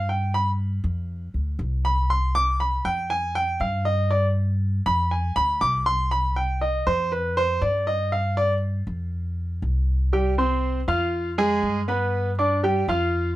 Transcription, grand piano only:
0.09 0.33 G5 medium
0.34 0.49 B5 loud
1.85 2.09 B5 medium
2.10 2.34 C6 medium
2.35 2.59 D6 loud
2.60 2.84 B5 medium
2.85 3.09 G5 loud
3.10 3.35 G#5 medium
3.35 3.60 G5 loud
3.61 3.85 F5 medium
3.85 4.10 D#5 medium
4.11 4.26 D5 medium
4.86 5.10 B5 loud
5.11 5.36 G#5 medium
5.36 5.60 B5 loud
5.61 5.86 D6 loud
5.86 6.11 C6 loud
6.11 6.36 B5 medium
6.36 6.61 G5 medium
6.61 6.86 D#5 medium
6.87 7.11 C5 loud
7.12 7.36 B4 medium
7.37 7.61 C5 loud
7.62 7.86 D5 medium
7.87 8.11 D#5 medium
8.12 8.37 F5 medium
8.37 8.52 D5 medium
10.13 10.33 G3 medium
10.13 10.33 G4 medium
10.13 10.34 G5 medium
10.38 10.79 C4 medium
10.38 10.79 C5 medium
10.38 10.79 C6 medium
10.88 11.29 F4 medium
10.88 11.29 F5 medium
10.88 11.29 F6 medium
11.38 11.79 G#3 medium
11.38 11.79 G#4 medium
11.38 11.79 G#5 loud
11.88 12.29 B3 medium
11.88 12.29 B4 medium
11.88 12.30 B5 medium
12.39 12.59 D4 medium
12.39 12.59 D5 medium
12.39 12.59 D6 medium
12.63 12.84 G3 medium
12.63 12.84 G4 medium
12.63 12.84 G5 medium
12.89 13.30 F4 medium
12.89 13.30 F5 medium
12.89 13.30 F6 medium

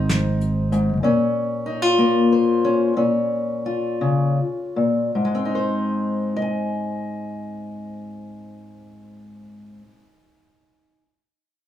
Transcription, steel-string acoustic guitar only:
0.00 0.71 G#2 medium
0.00 1.04 C4 medium
0.00 1.03 D#4 soft
0.00 1.06 C5 soft
0.72 1.03 G#2 medium
1.03 2.93 A#2 medium
1.03 2.63 C#4 soft
1.66 1.82 D#4 soft
1.82 2.97 F4 soft
1.98 2.93 A#3 medium
2.32 2.99 C5 soft
2.65 2.93 C#4 soft
2.96 4.38 A#2 medium
2.96 5.11 C#4 soft
3.66 5.11 F4 soft
4.01 4.38 C#3 soft
4.76 5.15 A#2 soft
5.15 9.81 G#2 soft
5.25 9.91 G#3 soft
5.35 10.01 C4 soft
5.45 6.36 D#4 soft
5.55 6.42 C5 soft
6.36 11.03 D#5 medium
6.42 11.08 G#5 soft

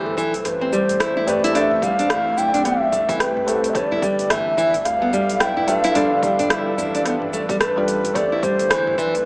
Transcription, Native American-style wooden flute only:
0.06 0.46 A4 medium
0.44 0.49 C5 medium
0.48 0.73 B4 medium
0.72 1.29 C5 loud
1.27 1.54 D5 loud
1.55 1.84 E5 loud
1.55 1.59 F5 medium
1.83 2.39 F5 loud
2.38 2.67 G5 loud
2.65 3.19 E5 loud
3.20 3.71 B4 loud
3.69 3.77 E5 medium
3.75 4.32 D5 loud
4.30 4.87 E5 loud
4.85 5.42 F5 loud
5.40 5.70 G5 loud
5.68 6.50 F5 loud
7.60 8.16 B4 loud
8.15 8.44 D5 loud
8.43 8.99 C5 loud
8.98 9.25 B4 loud

